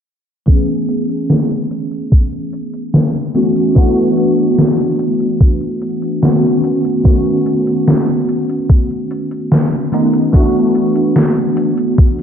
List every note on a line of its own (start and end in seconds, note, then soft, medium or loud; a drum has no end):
0.46 3.29 E3 medium
0.46 3.30 A3 medium
0.46 3.30 B3 medium
0.46 3.31 C#4 medium
0.46 3.31 G#4 medium
0.46 kick loud
0.46 closed hi-hat soft
0.68 closed hi-hat soft
0.89 closed hi-hat medium
1.09 closed hi-hat medium
1.30 snare loud
1.30 closed hi-hat medium
1.51 closed hi-hat soft
1.71 closed hi-hat medium
1.91 closed hi-hat medium
2.12 kick loud
2.12 closed hi-hat soft
2.32 closed hi-hat soft
2.53 closed hi-hat medium
2.73 closed hi-hat medium
2.94 snare loud
2.94 closed hi-hat medium
3.14 closed hi-hat soft
3.34 3.71 E3 medium
3.34 3.71 A3 medium
3.34 3.71 B3 medium
3.34 3.72 C#4 medium
3.34 3.72 F#4 medium
3.34 closed hi-hat medium
3.56 closed hi-hat medium
3.75 6.17 E3 loud
3.75 6.18 A3 medium
3.75 6.18 B3 medium
3.75 6.19 D4 medium
3.75 6.19 F#4 loud
3.75 kick loud
3.75 closed hi-hat medium
3.97 closed hi-hat soft
4.17 closed hi-hat loud
4.38 closed hi-hat medium
4.59 snare loud
4.59 closed hi-hat medium
4.79 closed hi-hat soft
4.99 closed hi-hat medium
5.20 closed hi-hat medium
5.41 kick loud
5.41 closed hi-hat medium
5.61 closed hi-hat soft
5.82 closed hi-hat medium
6.02 closed hi-hat medium
6.22 7.00 D#3 medium
6.22 7.00 A3 medium
6.22 7.00 B3 medium
6.22 7.01 C#4 medium
6.22 7.01 F#4 loud
6.22 snare loud
6.22 closed hi-hat soft
6.43 closed hi-hat soft
6.64 closed hi-hat medium
6.85 closed hi-hat medium
7.03 9.87 D#3 medium
7.03 9.87 A3 medium
7.03 9.88 B3 medium
7.03 9.88 C#4 medium
7.03 9.88 F#4 medium
7.03 kick loud
7.03 closed hi-hat medium
7.26 closed hi-hat soft
7.46 closed hi-hat medium
7.67 closed hi-hat medium
7.88 snare loud
7.88 closed hi-hat medium
8.08 closed hi-hat soft
8.29 closed hi-hat medium
8.49 closed hi-hat medium
8.69 kick loud
8.69 closed hi-hat medium
8.90 closed hi-hat soft
9.11 closed hi-hat medium
9.31 closed hi-hat medium
9.52 snare loud
9.52 closed hi-hat medium
9.72 closed hi-hat soft
9.92 10.29 D#3 medium
9.92 10.29 A3 medium
9.92 10.29 B3 medium
9.92 10.29 C#4 medium
9.92 10.29 D#4 medium
9.92 closed hi-hat medium
10.13 closed hi-hat medium
10.32 12.23 E3 loud
10.32 12.23 A3 medium
10.32 12.23 B3 medium
10.32 12.23 D4 medium
10.32 12.23 F#4 loud
10.32 kick loud
10.32 closed hi-hat soft
10.54 closed hi-hat soft
10.75 closed hi-hat medium
10.95 closed hi-hat soft
11.16 snare loud
11.16 closed hi-hat soft
11.37 closed hi-hat soft
11.57 closed hi-hat medium
11.78 closed hi-hat medium
11.98 kick loud
11.98 closed hi-hat medium
12.19 closed hi-hat soft